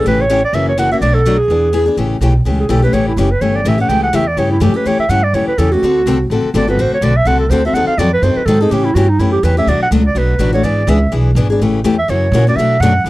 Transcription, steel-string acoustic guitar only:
0.06 C#3 E3 A3 C#4 G4
0.29 C#3 E3 A3 C#4 G4
0.54 C#3 E3 A#3 C#4 F#4
0.78 C#3 E3 A#3 C#4 F#4
0.91 A#3 C#4 F#4
1.02 B2 F#3 A3 D4 F#4
1.25 B2 F#3 A3 D4 F#4
1.50 E3 B3 D4 G#4
1.73 E3 B3 D4 G#4
1.86 B3 D4 G#4
1.97 C#3 E3 A3 C#4 G4
2.21 C#3 E3 A3 C#4 G4
2.45 C#3 E3 A3 C#4 G4
2.69 C#3 E3 A3 C#4 G4
2.82 A3 C#4 G4
2.93 C#3 E3 A3 C#4 G4
3.17 C#3 E3 A3 C#4 G4
3.41 C#3 E3 A3 C#4 G4
3.65 C#3 E3 A3 C#4 G4
3.78 A3 C#4 G4
3.89 C#3 E3 A3 C#4 G4
4.13 C#3 E3 A3 C#4 G4
4.37 C#3 E3 A3 C#4 G4
4.60 C#3 E3 A3 C#4 G4
4.74 A3 C#4 G4
4.85 C#3 E3 A3 C#4 G4
5.09 C#3 E3 A3 C#4 G4
5.34 C#3 E3 A3 C#4 G4
5.58 C#3 E3 A3 C#4 G4
5.72 A3 C#4 G4
5.83 D3 A3 C4 F#4 A4
6.07 D3 A3 C4 F#4 A4
6.31 D3 A3 C4 F#4 A4
6.54 D3 A3 C4 F#4 A4
6.67 C4 F#4 A4
6.79 D3 A3 C4 F#4 A4
7.02 D3 A3 C4 F#4 A4
7.25 D3 A3 C4 F#4 A4
7.51 D3 A3 C4 F#4 A4
7.65 C4 F#4 A4
7.75 D#3 F#3 C4 D#4 A4
7.99 D#3 F#3 C4 D#4 A4
8.23 D#3 F#3 C4 D#4 A4
8.48 D#3 F#3 C4 D#4 A4
8.61 C4 D#4 A4
8.71 C#3 E3 A3 C#4 G4
8.96 C#3 E3 A3 C#4 G4
9.19 C#3 E3 A3 C#4 G4
9.43 C#3 E3 A3 C#4 G4
9.57 A3 C#4 G4
9.67 B2 F#3 A3 D4 F#4
9.92 B2 F#3 A3 D4 F#4
10.15 B2 F#3 A3 D4 F#4
10.39 B2 F#3 A3 D4 F#4
10.53 A3 D4 F#4
10.63 E3 B3 D4 G#4
10.87 E3 B3 D4 G#4
11.12 E3 B3 D4 G#4
11.36 E3 B3 D4 G#4
11.50 B3 D4 G#4
11.61 C#3 E3 A3 C#4 G4
11.84 C#3 E3 A3 C#4 G4
12.08 C#3 E3 A#3 C#4 F#4
12.33 C#3 E3 A#3 C#4 F#4
12.48 A#3 C#4
12.58 B2 F#3 A3 D4 F#4
12.82 B2 F#3 A3 D4 F#4
13.06 E3 B3

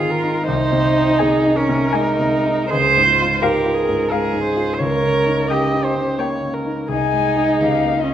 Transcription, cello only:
Already playing: F4
0.47 D#4
1.57 C#4
1.95 D#4
2.70 C5
3.42 A#4
4.11 G#4
4.73 C5
4.82 A#4
5.51 G4
6.92 D#4
8.04 C#4

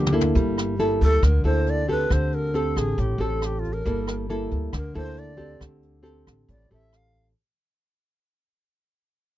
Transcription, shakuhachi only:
Already playing: G4
1.03 A4
1.24 A#4
1.46 C5
1.70 D5
1.91 B4
2.13 C5
2.34 A#4
2.56 A4
2.78 G#4
3.00 G4
3.21 A4
3.45 G4
3.59 F4
3.73 A#4
4.76 A#4
4.97 C5
5.19 D5
6.51 D5
6.73 E5
6.96 F5

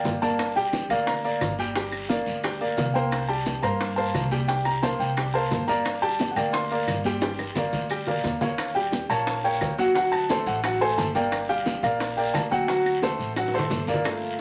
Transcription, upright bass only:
0.04 G1
0.89 D2
1.41 G1
2.27 D2
2.78 C2
3.63 G2
4.14 C2
5.00 C2
5.51 G1
6.36 D2
6.87 G1
7.73 D2
8.24 D#2
9.09 A#1
9.61 D2
10.46 A1
10.98 G1
11.83 A#1
12.34 D2
13.19 A1
13.70 G1

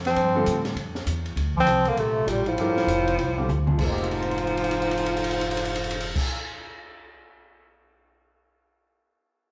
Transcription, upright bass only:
Already playing: F2
0.16 G2
0.47 A2
0.75 F2
1.06 E2
1.36 D2
1.66 C2
1.97 A#1
2.26 A1
2.56 G1
2.87 F1
3.19 C2
3.49 D2
3.79 F1

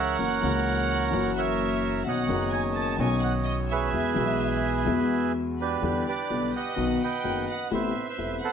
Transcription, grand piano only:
Already playing: C#2 C#3 E3 G#3 C#4 G#4
0.19 F#2 E3 F#3 A#3 C#4 F#4
0.41 C#2 C#3 E3 A#3 C#4 F#4
1.11 F#2 E3 F#3 A#3 C#4
1.15 F#4
2.05 B1 B2 D#3 B3 C#4 F#4
2.27 F#1 F#2 D#3 B3 C#4 F#4
2.97 B1 B2 D#3 B3 C#4 F#4
3.92 E2 E3 G#3 B3 F#4
4.14 B1 B2 E3 G#3 B3 F#4
4.86 E2 E3 G#3 B3 F#4
5.82 E2 D3 E3 G3 B3 E4
6.30 B1 B2 D3 G3 B3 E4
6.76 B1 B2 D#3 F#3 B3 F#4
7.24 F#1 F#2 D#3 F#3 B3 F#4
7.71 A1 A2 C3 A3 B3 E4
8.18 E1 E2 C3 A3 B3 E4

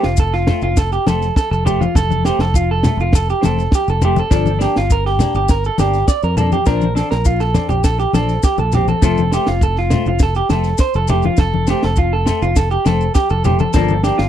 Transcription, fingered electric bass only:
0.04 F1
0.62 F1
1.07 F1
1.51 F1
1.95 F1
2.39 F1
2.97 F1
3.44 F1
3.88 F1
4.31 G1
4.77 G1
5.34 G1
5.80 G1
6.23 F2
6.67 A#1
7.12 A#1
7.71 A#1
8.14 A#1
8.58 A#1
9.02 F1
9.48 F1
10.06 F1
10.50 F1
10.95 F1
11.38 F1
11.84 F1
12.42 F1
12.86 F1
13.31 F1
13.75 G1
14.19 G1

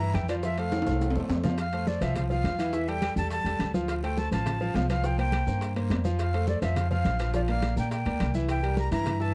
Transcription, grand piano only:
0.00 E3 E4 E5
0.29 F3 F4 F5
0.43 F3 F4 F5
0.58 A3 A4 C5
0.86 A3 A4 C5
1.15 A3 A4 C5
1.44 F3 F4 F5
1.73 A3 A4 C5
2.02 F3 F4 F5
2.30 F3 F4 F5
2.59 E3 E4 E5
2.73 E3 E4 E5
2.88 G3 G4 A4
3.17 G3 G4 A4
3.45 G3 G4 A4
3.74 F3 F4 F5
4.03 A3 A4 C5
4.32 F3 F4 F5
4.61 F3 F4 F5
4.90 F3 F4 F5
5.04 F3 F4 F5
5.18 A#3 A#4 C5
5.47 A#3 A#4 C5
5.76 A#3 A#4 C5
6.05 F3 F4 F5
6.34 A3 A4 C5
6.62 F3 F4 F5
6.91 F3 F4 F5
7.20 F3 F4 F5
7.34 F3 F4 F5
7.49 A#3 A#4 D5
7.77 A#3 A#4 D5
8.06 A#3 A#4 D5
8.35 E3 E4 E5
8.63 G3 G4 A#4
8.92 E3 E4 E5
9.20 E3 E4 E5

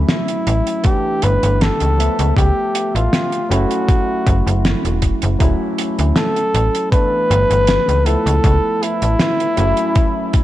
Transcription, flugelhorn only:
0.09 E4
0.86 G4
1.24 B4
1.62 A4
2.37 G4
2.95 F4
3.51 F#4
6.16 A4
6.92 B4
8.06 A4
8.82 E4

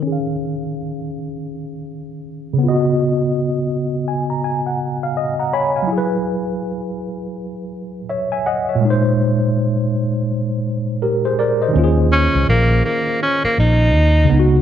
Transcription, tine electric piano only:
Already playing: D#3
0.02 C#4
0.07 G#4
0.12 F5
2.54 C#3
2.58 B3
2.64 F4
2.69 F#4 D#5
4.08 G#5
4.30 A#5
4.44 G#5
4.66 F#5
5.03 F5
5.17 D#5
5.39 F#5 A#5
5.53 C#5 G#5 B5
5.76 F5 G#5
5.82 F#3
5.87 E4
5.92 G#4
5.98 B4
8.09 C#5 E5
8.32 E5 G#5
8.46 D#5 F#5
8.69 C#5 E5
8.75 A#2
8.80 G#3
8.85 D#4
8.90 C5
11.02 G4 A#4
11.25 G#4 C5
11.39 A#4 D5
11.62 C5 D#5
11.68 D#3
11.73 C#4
11.78 F4
11.84 G#4
14.24 C#3
14.29 B3
14.34 D#4
14.39 F#4

